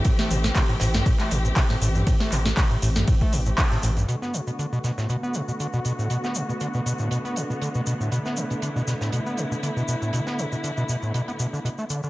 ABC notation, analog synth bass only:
X:1
M:4/4
L:1/8
Q:"Swing 16ths" 1/4=119
K:Bm
V:1 name="Analog synth bass" clef=bass
z A,,, z A,,, z A,,, z A,,, | z A,,, z A,,, z A,,, z A,,, | z8 | z8 |
z8 | z8 |]